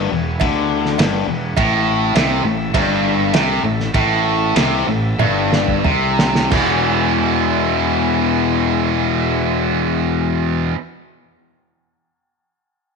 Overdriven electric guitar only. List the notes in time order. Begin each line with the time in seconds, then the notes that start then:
Already playing: G2
0.12 E2
0.41 D3
0.99 G2
1.28 E2
1.57 A2
2.16 C3
2.44 A2
2.74 G2
3.34 C3
3.64 A2
3.95 A2
4.56 C3
4.88 A2
5.19 G2
5.85 C3
6.51 E2 B2 E3